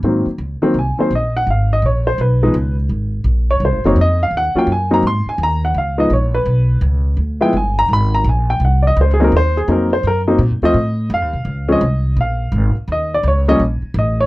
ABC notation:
X:1
M:4/4
L:1/8
Q:"Swing" 1/4=168
K:Abmix
V:1 name="Grand piano"
z4 a c e g | f e d c _c3 z | z3 d c d e f | g =g a b c' a b _g |
f e d _c3 z2 | z =g a b =b _b a g | g [=de] (3c A B c A B c | B z2 e3 f2- |
f e3 f3 z | e =d _d e z2 e d |]
V:2 name="Grand piano"
[E,G,B,C] z2 [E,G,B,C] z [E,G,B,C] z2 | z4 z [F,A,_CE] z2 | z4 z [G,B,CE] z2 | z [G,B,DF] z [G,B,CE] z4 |
z [F,A,_CE] z6 | z [F,A,=B,_F] z6 | z3 [G,B,CE] z2 [G,B,CE] z | z [G,B,CE] z [F,=A,CF] z4 |
z [F,A,CD] z6 | z3 [F,=G,B,D] z4 |]
V:3 name="Upright bass" clef=bass
A,, z D,, z C,, z B,,,2 | A,,,2 B,,,2 _C,,2 D,,2 | A,,,2 B,,,2 (3C,, A,,, G,,, F,,2 | E,, z G,,2 A,, z E,,2 |
D,,2 B,,,2 _C,,2 D,,2 | =D,,2 =G,,,2 A,,,2 B,,,2 | C,,2 D,,2 E,,2 F,,2 | G,,2 (3B,, G,, E,, =A,,2 (3F,, E,, C,, |
D,,2 C,,2 B,,,2 A,,, z | E,,2 D,,2 B,,, z =A,,,2 |]